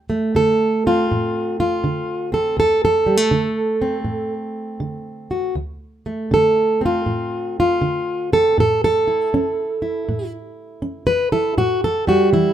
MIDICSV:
0, 0, Header, 1, 2, 480
1, 0, Start_track
1, 0, Tempo, 746269
1, 1665, Time_signature, 4, 2, 24, 8
1, 8061, End_track
2, 0, Start_track
2, 0, Title_t, "Steel-string acoustic guitar"
2, 0, Program_c, 0, 25
2, 0, Note_on_c, 0, 38, 73
2, 61, Note_on_c, 0, 57, 50
2, 189, Note_off_c, 0, 38, 0
2, 224, Note_on_c, 0, 50, 61
2, 233, Note_on_c, 0, 69, 102
2, 549, Note_off_c, 0, 69, 0
2, 556, Note_on_c, 0, 60, 45
2, 559, Note_on_c, 0, 65, 80
2, 672, Note_off_c, 0, 50, 0
2, 717, Note_on_c, 0, 45, 69
2, 1022, Note_off_c, 0, 65, 0
2, 1029, Note_on_c, 0, 65, 92
2, 1158, Note_off_c, 0, 45, 0
2, 1183, Note_on_c, 0, 50, 72
2, 1490, Note_off_c, 0, 60, 0
2, 1493, Note_on_c, 0, 60, 48
2, 1502, Note_off_c, 0, 65, 0
2, 1504, Note_on_c, 0, 69, 85
2, 1630, Note_off_c, 0, 50, 0
2, 1653, Note_on_c, 0, 38, 76
2, 1662, Note_off_c, 0, 69, 0
2, 1670, Note_on_c, 0, 69, 106
2, 1672, Note_off_c, 0, 60, 0
2, 1823, Note_off_c, 0, 69, 0
2, 1831, Note_on_c, 0, 69, 95
2, 1969, Note_off_c, 0, 57, 0
2, 1971, Note_on_c, 0, 55, 45
2, 2042, Note_off_c, 0, 55, 0
2, 2042, Note_on_c, 0, 57, 36
2, 2105, Note_off_c, 0, 38, 0
2, 2131, Note_on_c, 0, 50, 71
2, 2454, Note_on_c, 0, 60, 50
2, 2584, Note_off_c, 0, 50, 0
2, 2602, Note_on_c, 0, 45, 65
2, 2788, Note_off_c, 0, 69, 0
2, 3060, Note_off_c, 0, 45, 0
2, 3088, Note_on_c, 0, 50, 62
2, 3414, Note_on_c, 0, 66, 49
2, 3543, Note_off_c, 0, 50, 0
2, 3563, Note_off_c, 0, 60, 0
2, 3563, Note_off_c, 0, 66, 0
2, 3572, Note_on_c, 0, 38, 77
2, 3574, Note_off_c, 0, 57, 0
2, 3898, Note_on_c, 0, 57, 50
2, 4025, Note_off_c, 0, 38, 0
2, 4060, Note_on_c, 0, 50, 65
2, 4076, Note_on_c, 0, 69, 90
2, 4381, Note_on_c, 0, 60, 47
2, 4390, Note_off_c, 0, 69, 0
2, 4410, Note_on_c, 0, 65, 81
2, 4509, Note_off_c, 0, 50, 0
2, 4543, Note_on_c, 0, 45, 60
2, 4877, Note_off_c, 0, 65, 0
2, 4887, Note_on_c, 0, 65, 88
2, 4990, Note_off_c, 0, 45, 0
2, 5027, Note_on_c, 0, 50, 66
2, 5340, Note_off_c, 0, 60, 0
2, 5355, Note_on_c, 0, 60, 51
2, 5356, Note_off_c, 0, 65, 0
2, 5360, Note_on_c, 0, 69, 98
2, 5472, Note_off_c, 0, 50, 0
2, 5493, Note_off_c, 0, 60, 0
2, 5512, Note_off_c, 0, 69, 0
2, 5519, Note_on_c, 0, 45, 72
2, 5533, Note_on_c, 0, 69, 95
2, 5679, Note_off_c, 0, 69, 0
2, 5688, Note_on_c, 0, 69, 108
2, 5837, Note_on_c, 0, 64, 47
2, 5959, Note_off_c, 0, 45, 0
2, 6005, Note_off_c, 0, 57, 0
2, 6008, Note_on_c, 0, 61, 69
2, 6314, Note_off_c, 0, 64, 0
2, 6317, Note_on_c, 0, 64, 51
2, 6444, Note_off_c, 0, 61, 0
2, 6487, Note_on_c, 0, 45, 61
2, 6637, Note_off_c, 0, 69, 0
2, 6924, Note_off_c, 0, 45, 0
2, 6960, Note_on_c, 0, 61, 67
2, 7118, Note_on_c, 0, 71, 105
2, 7269, Note_off_c, 0, 64, 0
2, 7272, Note_off_c, 0, 71, 0
2, 7283, Note_on_c, 0, 69, 96
2, 7287, Note_on_c, 0, 64, 57
2, 7400, Note_off_c, 0, 61, 0
2, 7420, Note_off_c, 0, 64, 0
2, 7435, Note_off_c, 0, 69, 0
2, 7446, Note_on_c, 0, 45, 83
2, 7449, Note_on_c, 0, 66, 98
2, 7597, Note_off_c, 0, 66, 0
2, 7617, Note_on_c, 0, 69, 96
2, 7762, Note_off_c, 0, 69, 0
2, 7766, Note_on_c, 0, 55, 51
2, 7773, Note_on_c, 0, 66, 94
2, 7884, Note_off_c, 0, 45, 0
2, 7920, Note_off_c, 0, 66, 0
2, 7928, Note_on_c, 0, 52, 64
2, 7934, Note_on_c, 0, 64, 94
2, 8061, Note_off_c, 0, 52, 0
2, 8061, Note_off_c, 0, 55, 0
2, 8061, Note_off_c, 0, 64, 0
2, 8061, End_track
0, 0, End_of_file